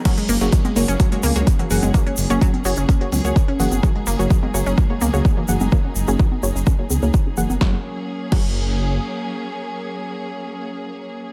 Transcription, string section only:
\new Staff \with { instrumentName = "String section" } { \time 4/4 \key fis \major \tempo 4 = 127 << { <fis ais gis'>1~ | <fis ais gis'>1~ | <fis ais gis'>1~ | <fis ais gis'>1 |
<fis ais cis' gis'>1~ | <fis ais cis' gis'>1 | } \\ { cis'1~ | cis'1 | dis'1~ | dis'1 |
r1 | r1 | } >> }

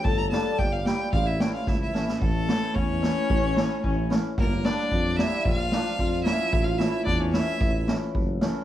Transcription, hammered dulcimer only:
\new Staff \with { instrumentName = "Hammered dulcimer" } { \time 2/4 \tempo 4 = 111 r8 <g bes d'>16 r8. <g bes e'>16 r16 | r8 <e a cis'>16 r8. <e a cis'>16 r16 | r8 <e a cis'>16 r8. <e a e'>16 r16 | r8 <e a cis'>16 r8. <e a cis'>16 r16 |
r8 <g bes d'>16 r8. <g bes d'>16 r16 | r8 <f bes d'>16 r8. <f bes cis'>16 r16 | r8 <e a cis'>16 r8. <e a cis'>16 r16 | r8 <e a cis'>16 r8. <e a cis'>16 r16 | }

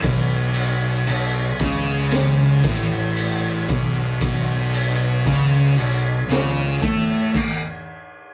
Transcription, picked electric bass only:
\new Staff \with { instrumentName = "Picked electric bass" } { \clef bass \time 4/4 \key a \lydian \tempo 4 = 58 b,,4 b,,8 cis,4 a,,4 b,,8~ | b,,4 cis,8 b,,8 cis,8 a,8 r4 | }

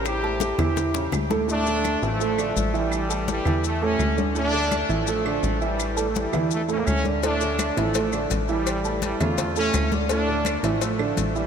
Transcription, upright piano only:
\new Staff \with { instrumentName = "Upright piano" } { \time 4/4 \key a \phrygian \tempo 4 = 167 <cis cis' cis''>8 <a a' a''>4 <e e' e''>4 <cis cis' cis''>4 <a, a a'>8 | \key d \minor <a, a a'>8 <d d' d''>4 <e e' e''>8 <a, a a'>8 <d d' d''>4 <e e' e''>8~ | <e e' e''>8 <a a' a''>4 <e e' e''>4 <a, a a'>4 <d d' d''>8 | <a, a a'>8 <d d' d''>4 <e e' e''>8 <a, a a'>8 <d d' d''>4 <e e' e''>8~ |
<e e' e''>8 <a a' a''>4 <e e' e''>4 <a, a a'>4 <d d' d''>8 | <a, a a'>8 <d d' d''>4 <e e' e''>8 <a, a a'>8 <d d' d''>4 <e e' e''>8~ | <e e' e''>8 <a a' a''>4 <cis cis' e''>4 <a, a a'>4 <d d' d''>8 | <a, a a'>8 <d d' d''>4 <e e' e''>8 <a, a a'>8 <d d' d''>4 <e e' e''>8 | }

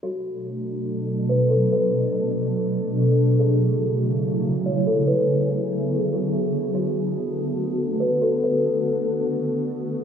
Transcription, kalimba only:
\new Staff \with { instrumentName = "Kalimba" } { \time 4/4 \key b \dorian \tempo 4 = 143 fis'2 r4 b'8 a'8 | b'2. r4 | gis'2 r4 cis''8 a'8 | b'2~ b'8 gis'8 r4 |
fis'2 r4 b'8 a'8 | b'2. r4 | }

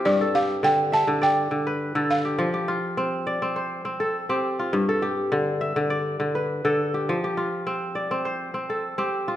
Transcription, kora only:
<<
  \new Staff \with { instrumentName = "Kora" } { \time 4/4 \key g \mixolydian \tempo 4 = 102 g'16 a'16 g'8. r16 e''8 d''8. b'8 a'8 g'16~ | g'16 g'16 f'8. r16 d''8 c''8. a'8 g'8 f'16~ | f'16 a'16 g'8. r16 e''8 d''8. b'8 a'8 g'16~ | g'16 g'16 f'8. r16 d''8 c''8. a'8 g'8 f'16 | }
  \new Staff \with { instrumentName = "Kora" } { \clef bass \time 4/4 \key g \mixolydian g,8 r8 d8 r16 d8 r16 d8 r16 d8 r16 | f8 r8 c'8 r16 c'8 r16 c'8 r16 c'8 r16 | g,8 r8 d8 r16 d8 r16 d8 r16 d8 r16 | f8 r8 c'8 r16 c'8 r16 c'8 r16 c'8 r16 | }
>>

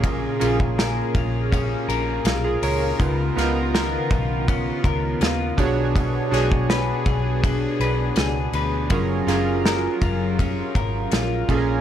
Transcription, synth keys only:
\new Staff \with { instrumentName = "Synth keys" } { \time 4/4 \key fis \major \tempo 4 = 81 << { r2. r16 <eis' gis'>16 <ais' cis''>16 ais'16~ | ais'16 r2. r8. | r1 | r1 | } \\ { <ais cis' eis' gis'>8 <ais cis' eis' gis'>4. r2 | <b dis' eis' ais'>8 <b dis' eis' ais'>4. r4. <d' fis' gis' cis''>8~ | <d' fis' gis' cis''>8 <d' fis' gis' cis''>4. r2 | <cis' eis' gis' ais'>8 <cis' eis' gis' ais'>4. r4. <cis' eis' gis' a' ais'>8 | } >> }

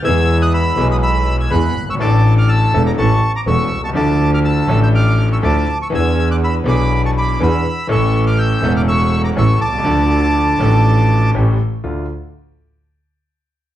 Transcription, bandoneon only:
\new Staff \with { instrumentName = "Bandoneon" } { \time 4/4 \key d \minor \tempo 4 = 122 <e''' gis'''>8. <ees''' fis'''>16 <b'' e'''>8. <b'' ees'''>16 <b'' e'''>8. <e''' gis'''>16 <b'' fis'''>8. <cis''' e'''>16 | <a'' d'''>8. <d''' f'''>16 <a'' e'''>8. <bes'' d'''>16 <a'' cis'''>8. <bes'' d'''>16 <cis''' e'''>8. <a'' cis'''>16 | <a'' d'''>8. <d''' f'''>16 <a'' e'''>8. <e''' g'''>16 <d''' f'''>8. <cis''' e'''>16 <a'' d'''>8. <cis''' e'''>16 | <e''' gis'''>8. <d''' fis'''>16 <b'' e'''>8 <b'' d'''>8. <a'' cis'''>16 <b'' d'''>8 <b'' e'''>4 |
<cis''' e'''>8. <d''' f'''>16 <e''' g'''>8. <d''' f'''>16 <cis''' e'''>8. <bes'' d'''>16 <cis''' e'''>8 <a'' d'''>8~ | <a'' d'''>2. r4 | r1 | }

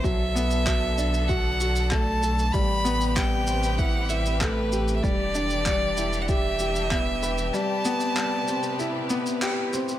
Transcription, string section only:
\new Staff \with { instrumentName = "String section" } { \time 4/4 \key a \dorian \tempo 4 = 96 << { d1 | <c b'>1 | <e d'>1 | <c b'>1 | } \\ { a'1 | g'1 | g'1~ | g'1 | } >> }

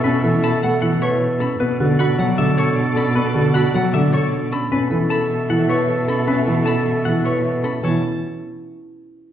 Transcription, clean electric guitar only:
\new Staff \with { instrumentName = "Clean electric guitar" } { \time 4/4 \key fis \phrygian \tempo 4 = 154 b'8 r8 a''8 r8 fis''8 cis''8 r8 a'8 | b'8 r8 fis''8 r8 e''8 cis''8 r8 a'8 | b'8 r8 fis''8 r8 e''8 cis''8 r8 a'8 | b'8 r8 a''8 r8 fis''8 cis''8 r8 a'8 |
b'8 r8 a''8 r8 fis''8 cis''8 r8 a'8 | cis''8 r2. r8 | }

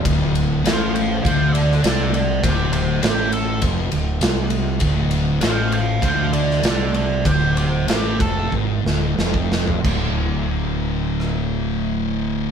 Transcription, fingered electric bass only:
\new Staff \with { instrumentName = "Fingered electric bass" } { \clef bass \time 4/4 \key d \minor \tempo 4 = 99 d,,4 a,,4 d,4 c,4 | d,,4 a,,4 f,,8 d,,8 c,4 | d,,4 a,,4 d,4 c,4 | d,,4 a,,8 f,,8 gis,,8 d,,8 f,,4 |
d,,1 | }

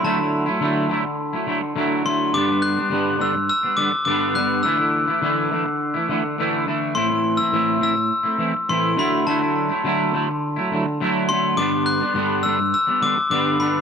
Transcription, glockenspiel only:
\new Staff \with { instrumentName = "Glockenspiel" } { \time 4/4 \key d \mixolydian \tempo 4 = 104 a''2 r4. c'''8 | d'''8 fis'''4 e'''8 e'''8 d'''8 d'''8 fis'''8 | e'''2 r2 | c'''8. e'''8. e'''4. c'''8 b''8 |
a''2 r4. c'''8 | d'''8 fis'''4 e'''8 e'''8 d'''8 d'''8 b''8 | }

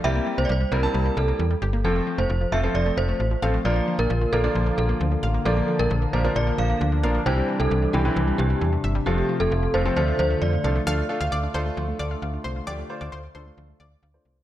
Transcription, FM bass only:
\new Staff \with { instrumentName = "FM bass" } { \clef bass \time 4/4 \key d \minor \tempo 4 = 133 c,8 r16 c,16 c,8 c,8 c,8 c,8 e,8 g,,8 | f,,8 r16 f,,16 f,,8 f,,8 f,,8 f,,8 a,,8 a,,8 | bes,,8 r16 bes,,16 bes,,8 bes,,8 bes,,8 bes,,8 d,8 a,,8 | bes,,8 r16 bes,,16 bes,,8 bes,,8 bes,,8 bes,,8 d,8 bes,,8 |
c,8 r16 c,16 c,8 c,8 c,8 c,8 e,8 g,,8 | f,,8 r16 f,,16 f,,8 f,,8 d,8 d,8 f,8 c,8 | d,8 r16 d,16 d,8 d,8 d,8 d,8 d,8 c,8 | d,8 r16 d,16 d,8 d,8 d,8 d,8 d,8 c,8 | }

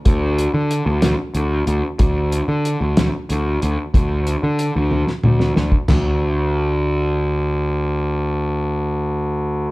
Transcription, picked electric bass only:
\new Staff \with { instrumentName = "Picked electric bass" } { \clef bass \time 6/8 \key c \lydian \tempo 4. = 62 d,8. d8 d,8 r16 d,8 d,16 r16 | d,8. d8 d,8 r16 d,8 d,16 r16 | d,8. d8 d,8 r16 d,8 d,16 r16 | d,2.~ |
d,2. | }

